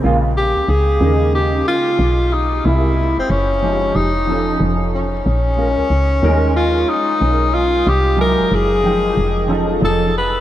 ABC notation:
X:1
M:4/4
L:1/16
Q:"Swing 16ths" 1/4=92
K:Bbdor
V:1 name="Tenor saxophone"
z2 G2 A4 G2 F4 E2 | =E3 C D4 _E4 z2 ^C2- | ^C8 F2 E4 F2 | G2 B2 A6 z2 =A2 _c2 |]
V:2 name="Grand piano"
[D,A,B,F]2 z4 [D,A,B,E]6 z4 | [C,A,B,=E]2 z4 [F,A,_EG]2 z2 [F,^CE=A]2 [F,CEA]2 z2 | z2 [A,DFB]2 z2 [G,A,DEB]4 z2 [A,DEB]4 | z2 [_G,A,=EA]4 [F,A,_E=g]4 [F,DE=A]2 [F,^CEA]2 z2 |]
V:3 name="FM bass" clef=bass
B,,,3 D,, D,,2 E,,4 z2 _C,,4 | C,,3 _G,,, G,,,4 F,,,4 F,,,4 | B,,,3 D,, D,,2 E,,4 z2 _C,,4 | C,,3 _G,,, G,,,4 F,,,4 F,,,4 |]